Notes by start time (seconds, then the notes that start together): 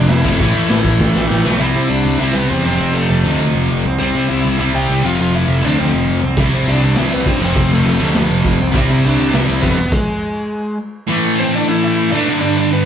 Already playing: F2 C3 F3
0.09 F1 E5, snare, crash
0.13 E4
0.24 F1 F2 C3 F3, kick, crash
0.39 A1 A2 E3 A3 E4 E5, kick, crash
0.55 A1, crash
0.70 A1, snare, crash
0.85 A1, kick, crash
1.00 A1, kick, snare
1.15 A1, snare
1.30 A1, snare
1.44 B1 A2 E3 A3, snare
1.59 C2 C3 G3 C4 E4 E5
1.75 C3
1.89 C2 D4 D5
2.05 C2
2.18 C2 C3 G3 C4 E5
2.22 E4
2.33 C2 B3 B4
2.50 E2 C4 C5
2.64 F1 F2 C3 F3 C4 C5
2.80 F1
2.94 A3 A4
3.10 F1 A3 A4
3.23 D2 F2 C3 F3
3.39 D2
3.55 F1
3.70 F1
3.86 C2
3.99 C2 C3 G3 C4 C5
4.15 C3
4.29 C2 E4 E5
4.45 C2
4.58 C2 C3 G3 C4 E4 E5
4.74 C2 G4 G5
4.90 C2
5.01 F1 F2 C3 F3
5.06 F4 F5
5.19 F1 F4 F5
5.35 E4 E5
5.49 F1
5.61 D2 F2 C3 F3 D5
5.66 D4
5.79 D2 C4 C5
5.94 F1
6.09 F1
6.24 C2
6.37 C2 C3 G3 C4 E4 E5, kick, crash
6.53 C3
6.67 C2 D4 D5, crash
6.83 C2
6.95 C2 C3 G3 C4 E4, snare, crash
6.99 E5
7.12 C2 B3 B4
7.26 G2 C4 C5, kick, crash
7.39 F1 F2 C3 F3
7.44 C4 C5
7.55 F1, kick, crash
7.73 A3 A4
7.85 F1 A3 A4, crash
7.99 D2 F2 C3 F3
8.15 D2, snare, crash
8.31 F1
8.44 F1, kick, crash
8.60 C2
8.72 C2 C3 G3 C4, kick, crash
8.76 E4 E5
8.90 C3
9.04 C2 D4 D5, crash
9.20 C2
9.31 C2 C3 G3 C4, snare, crash
9.35 E4 E5
9.49 C2
9.62 F2 B3 B4, kick, crash
9.79 E1
9.92 G#3 G#4, kick, crash
11.08 A2 E3 A3
11.39 C4 C5
11.56 D4 D5
11.68 E4 E5
11.84 E4 E5
12.11 A2 E3 A3 D4 D5
12.27 G2 D3 G3
12.41 D4 D5
12.57 D4 D5
12.73 B3 B4